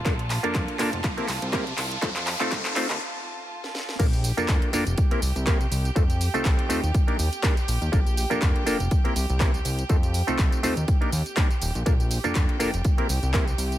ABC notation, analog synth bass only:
X:1
M:4/4
L:1/16
Q:"Swing 16ths" 1/4=122
K:Bb
V:1 name="Analog synth bass" clef=bass
B,,,3 F,, F,, z F,,, F,,, z2 C,, C,,3 C,, z | F,,3 C,, C,, z E,, E,, z8 | B,,,3 F,, F,, z F,,, F,,, z2 C,, C,,3 C,, z | F,,3 C,, C,, z E,, E,, z2 E,, z3 B,,, E,, |
B,,,3 F,, F,, z F,,, F,,, z2 C,, C,,3 C,, z | F,,3 C,, C,, z E,, E,, z2 E,, z3 E,,, B,,, | B,,,3 F,, F,, z F,,, F,,, z2 C,, C,,3 C,, z |]